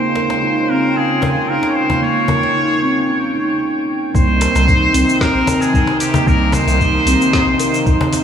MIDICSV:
0, 0, Header, 1, 8, 480
1, 0, Start_track
1, 0, Tempo, 530973
1, 1828, Time_signature, 4, 2, 24, 8
1, 7446, End_track
2, 0, Start_track
2, 0, Title_t, "Synth texture"
2, 0, Program_c, 0, 99
2, 0, Note_on_c, 0, 79, 72
2, 3267, Note_off_c, 0, 79, 0
2, 7446, End_track
3, 0, Start_track
3, 0, Title_t, "Muted trumpet"
3, 0, Program_c, 1, 59
3, 0, Note_on_c, 1, 72, 76
3, 629, Note_on_c, 1, 70, 79
3, 643, Note_off_c, 1, 72, 0
3, 871, Note_on_c, 1, 68, 83
3, 884, Note_off_c, 1, 70, 0
3, 1104, Note_off_c, 1, 68, 0
3, 1110, Note_on_c, 1, 68, 77
3, 1344, Note_on_c, 1, 70, 89
3, 1358, Note_off_c, 1, 68, 0
3, 1520, Note_off_c, 1, 70, 0
3, 1525, Note_on_c, 1, 73, 66
3, 1588, Note_on_c, 1, 72, 85
3, 1602, Note_off_c, 1, 73, 0
3, 1826, Note_off_c, 1, 72, 0
3, 1831, Note_on_c, 1, 73, 92
3, 3233, Note_off_c, 1, 73, 0
3, 3750, Note_on_c, 1, 72, 105
3, 4710, Note_on_c, 1, 70, 102
3, 4723, Note_off_c, 1, 72, 0
3, 5071, Note_on_c, 1, 68, 96
3, 5084, Note_off_c, 1, 70, 0
3, 5417, Note_off_c, 1, 68, 0
3, 5423, Note_on_c, 1, 67, 85
3, 5669, Note_on_c, 1, 70, 94
3, 5682, Note_off_c, 1, 67, 0
3, 5905, Note_on_c, 1, 72, 104
3, 5918, Note_off_c, 1, 70, 0
3, 7346, Note_off_c, 1, 72, 0
3, 7446, End_track
4, 0, Start_track
4, 0, Title_t, "Steel tongue drum"
4, 0, Program_c, 2, 114
4, 152, Note_on_c, 2, 70, 69
4, 221, Note_off_c, 2, 70, 0
4, 390, Note_on_c, 2, 63, 89
4, 508, Note_off_c, 2, 63, 0
4, 631, Note_on_c, 2, 60, 82
4, 749, Note_off_c, 2, 60, 0
4, 871, Note_on_c, 2, 61, 72
4, 1098, Note_off_c, 2, 61, 0
4, 1113, Note_on_c, 2, 70, 74
4, 1182, Note_off_c, 2, 70, 0
4, 1349, Note_on_c, 2, 63, 94
4, 1468, Note_off_c, 2, 63, 0
4, 1720, Note_on_c, 2, 58, 69
4, 1782, Note_off_c, 2, 58, 0
4, 1831, Note_on_c, 2, 58, 83
4, 1949, Note_off_c, 2, 58, 0
4, 2074, Note_on_c, 2, 70, 70
4, 2143, Note_off_c, 2, 70, 0
4, 2312, Note_on_c, 2, 63, 93
4, 2429, Note_off_c, 2, 63, 0
4, 2553, Note_on_c, 2, 60, 83
4, 2670, Note_off_c, 2, 60, 0
4, 2788, Note_on_c, 2, 61, 75
4, 2901, Note_off_c, 2, 61, 0
4, 3028, Note_on_c, 2, 63, 94
4, 3141, Note_off_c, 2, 63, 0
4, 3748, Note_on_c, 2, 58, 90
4, 3867, Note_off_c, 2, 58, 0
4, 3989, Note_on_c, 2, 70, 78
4, 4060, Note_off_c, 2, 70, 0
4, 4230, Note_on_c, 2, 63, 105
4, 4348, Note_off_c, 2, 63, 0
4, 4468, Note_on_c, 2, 60, 96
4, 4587, Note_off_c, 2, 60, 0
4, 4710, Note_on_c, 2, 60, 82
4, 4938, Note_off_c, 2, 60, 0
4, 4952, Note_on_c, 2, 70, 78
4, 5022, Note_off_c, 2, 70, 0
4, 5191, Note_on_c, 2, 63, 105
4, 5309, Note_off_c, 2, 63, 0
4, 5559, Note_on_c, 2, 58, 76
4, 5622, Note_off_c, 2, 58, 0
4, 5670, Note_on_c, 2, 58, 91
4, 5788, Note_off_c, 2, 58, 0
4, 5910, Note_on_c, 2, 70, 76
4, 5981, Note_off_c, 2, 70, 0
4, 6149, Note_on_c, 2, 63, 107
4, 6268, Note_off_c, 2, 63, 0
4, 6389, Note_on_c, 2, 60, 102
4, 6508, Note_off_c, 2, 60, 0
4, 6629, Note_on_c, 2, 60, 85
4, 6857, Note_off_c, 2, 60, 0
4, 6869, Note_on_c, 2, 70, 81
4, 6940, Note_off_c, 2, 70, 0
4, 7109, Note_on_c, 2, 63, 112
4, 7228, Note_off_c, 2, 63, 0
4, 7446, End_track
5, 0, Start_track
5, 0, Title_t, "Analog synth pad"
5, 0, Program_c, 3, 89
5, 0, Note_on_c, 3, 49, 76
5, 0, Note_on_c, 3, 56, 78
5, 0, Note_on_c, 3, 63, 73
5, 0, Note_on_c, 3, 65, 89
5, 1790, Note_off_c, 3, 63, 0
5, 3230, Note_off_c, 3, 56, 0
5, 3231, Note_off_c, 3, 49, 0
5, 3231, Note_off_c, 3, 65, 0
5, 3742, Note_on_c, 3, 51, 81
5, 3742, Note_on_c, 3, 60, 81
5, 3745, Note_on_c, 3, 63, 87
5, 3746, Note_on_c, 3, 48, 88
5, 5646, Note_off_c, 3, 60, 0
5, 5670, Note_on_c, 3, 58, 81
5, 7446, Note_off_c, 3, 48, 0
5, 7446, Note_off_c, 3, 51, 0
5, 7446, Note_off_c, 3, 58, 0
5, 7446, Note_off_c, 3, 63, 0
5, 7446, End_track
6, 0, Start_track
6, 0, Title_t, "Analog synth bass"
6, 0, Program_c, 4, 38
6, 3747, Note_on_c, 4, 36, 95
6, 4033, Note_off_c, 4, 36, 0
6, 4114, Note_on_c, 4, 36, 97
6, 4395, Note_off_c, 4, 36, 0
6, 4469, Note_on_c, 4, 36, 85
6, 4544, Note_off_c, 4, 36, 0
6, 4832, Note_on_c, 4, 34, 82
6, 4902, Note_off_c, 4, 34, 0
6, 5186, Note_on_c, 4, 36, 84
6, 5263, Note_off_c, 4, 36, 0
6, 5666, Note_on_c, 4, 36, 98
6, 5953, Note_off_c, 4, 36, 0
6, 6029, Note_on_c, 4, 36, 100
6, 6313, Note_off_c, 4, 36, 0
6, 6382, Note_on_c, 4, 36, 87
6, 6460, Note_off_c, 4, 36, 0
6, 6748, Note_on_c, 4, 34, 77
6, 6820, Note_off_c, 4, 34, 0
6, 7106, Note_on_c, 4, 36, 86
6, 7183, Note_off_c, 4, 36, 0
6, 7446, End_track
7, 0, Start_track
7, 0, Title_t, "Cajon"
7, 140, Note_on_c, 9, 38, 62
7, 231, Note_off_c, 9, 38, 0
7, 271, Note_on_c, 9, 38, 59
7, 362, Note_off_c, 9, 38, 0
7, 1102, Note_on_c, 9, 38, 54
7, 1108, Note_on_c, 9, 36, 78
7, 1192, Note_off_c, 9, 38, 0
7, 1199, Note_off_c, 9, 36, 0
7, 1472, Note_on_c, 9, 38, 62
7, 1562, Note_off_c, 9, 38, 0
7, 1715, Note_on_c, 9, 36, 70
7, 1805, Note_off_c, 9, 36, 0
7, 2063, Note_on_c, 9, 36, 77
7, 2070, Note_on_c, 9, 38, 60
7, 2153, Note_off_c, 9, 36, 0
7, 2160, Note_off_c, 9, 38, 0
7, 2199, Note_on_c, 9, 38, 49
7, 2290, Note_off_c, 9, 38, 0
7, 3992, Note_on_c, 9, 38, 67
7, 4082, Note_off_c, 9, 38, 0
7, 4120, Note_on_c, 9, 38, 69
7, 4210, Note_off_c, 9, 38, 0
7, 4948, Note_on_c, 9, 36, 85
7, 4951, Note_on_c, 9, 38, 67
7, 5039, Note_off_c, 9, 36, 0
7, 5042, Note_off_c, 9, 38, 0
7, 5310, Note_on_c, 9, 38, 71
7, 5400, Note_off_c, 9, 38, 0
7, 5550, Note_on_c, 9, 36, 93
7, 5640, Note_off_c, 9, 36, 0
7, 5897, Note_on_c, 9, 38, 63
7, 5903, Note_on_c, 9, 36, 97
7, 5987, Note_off_c, 9, 38, 0
7, 5993, Note_off_c, 9, 36, 0
7, 6035, Note_on_c, 9, 38, 61
7, 6125, Note_off_c, 9, 38, 0
7, 7239, Note_on_c, 9, 36, 90
7, 7329, Note_off_c, 9, 36, 0
7, 7352, Note_on_c, 9, 38, 62
7, 7443, Note_off_c, 9, 38, 0
7, 7446, End_track
8, 0, Start_track
8, 0, Title_t, "Drums"
8, 3748, Note_on_c, 9, 36, 108
8, 3756, Note_on_c, 9, 69, 34
8, 3839, Note_off_c, 9, 36, 0
8, 3846, Note_off_c, 9, 69, 0
8, 3987, Note_on_c, 9, 42, 94
8, 3994, Note_on_c, 9, 69, 76
8, 4077, Note_off_c, 9, 42, 0
8, 4085, Note_off_c, 9, 69, 0
8, 4119, Note_on_c, 9, 69, 48
8, 4209, Note_off_c, 9, 69, 0
8, 4228, Note_on_c, 9, 36, 113
8, 4235, Note_on_c, 9, 69, 35
8, 4319, Note_off_c, 9, 36, 0
8, 4325, Note_off_c, 9, 69, 0
8, 4469, Note_on_c, 9, 42, 93
8, 4476, Note_on_c, 9, 69, 79
8, 4560, Note_off_c, 9, 42, 0
8, 4567, Note_off_c, 9, 69, 0
8, 4604, Note_on_c, 9, 69, 45
8, 4694, Note_off_c, 9, 69, 0
8, 4707, Note_on_c, 9, 36, 103
8, 4711, Note_on_c, 9, 38, 81
8, 4718, Note_on_c, 9, 69, 34
8, 4798, Note_off_c, 9, 36, 0
8, 4801, Note_off_c, 9, 38, 0
8, 4808, Note_off_c, 9, 69, 0
8, 4949, Note_on_c, 9, 42, 91
8, 4956, Note_on_c, 9, 69, 80
8, 5039, Note_off_c, 9, 42, 0
8, 5047, Note_off_c, 9, 69, 0
8, 5081, Note_on_c, 9, 69, 44
8, 5171, Note_off_c, 9, 69, 0
8, 5187, Note_on_c, 9, 36, 112
8, 5197, Note_on_c, 9, 69, 34
8, 5277, Note_off_c, 9, 36, 0
8, 5287, Note_off_c, 9, 69, 0
8, 5427, Note_on_c, 9, 42, 88
8, 5434, Note_on_c, 9, 69, 72
8, 5517, Note_off_c, 9, 42, 0
8, 5524, Note_off_c, 9, 69, 0
8, 5561, Note_on_c, 9, 69, 45
8, 5651, Note_off_c, 9, 69, 0
8, 5667, Note_on_c, 9, 36, 108
8, 5676, Note_on_c, 9, 69, 34
8, 5757, Note_off_c, 9, 36, 0
8, 5767, Note_off_c, 9, 69, 0
8, 5908, Note_on_c, 9, 42, 86
8, 5915, Note_on_c, 9, 69, 78
8, 5998, Note_off_c, 9, 42, 0
8, 6005, Note_off_c, 9, 69, 0
8, 6041, Note_on_c, 9, 69, 49
8, 6131, Note_off_c, 9, 69, 0
8, 6147, Note_on_c, 9, 36, 112
8, 6156, Note_on_c, 9, 69, 35
8, 6238, Note_off_c, 9, 36, 0
8, 6246, Note_off_c, 9, 69, 0
8, 6390, Note_on_c, 9, 42, 88
8, 6397, Note_on_c, 9, 69, 77
8, 6480, Note_off_c, 9, 42, 0
8, 6487, Note_off_c, 9, 69, 0
8, 6523, Note_on_c, 9, 69, 47
8, 6614, Note_off_c, 9, 69, 0
8, 6628, Note_on_c, 9, 36, 114
8, 6629, Note_on_c, 9, 38, 80
8, 6637, Note_on_c, 9, 69, 34
8, 6719, Note_off_c, 9, 36, 0
8, 6720, Note_off_c, 9, 38, 0
8, 6727, Note_off_c, 9, 69, 0
8, 6866, Note_on_c, 9, 42, 89
8, 6873, Note_on_c, 9, 69, 79
8, 6956, Note_off_c, 9, 42, 0
8, 6963, Note_off_c, 9, 69, 0
8, 6999, Note_on_c, 9, 69, 45
8, 7089, Note_off_c, 9, 69, 0
8, 7107, Note_on_c, 9, 36, 119
8, 7110, Note_on_c, 9, 69, 37
8, 7198, Note_off_c, 9, 36, 0
8, 7201, Note_off_c, 9, 69, 0
8, 7346, Note_on_c, 9, 42, 85
8, 7353, Note_on_c, 9, 69, 75
8, 7436, Note_off_c, 9, 42, 0
8, 7443, Note_off_c, 9, 69, 0
8, 7446, End_track
0, 0, End_of_file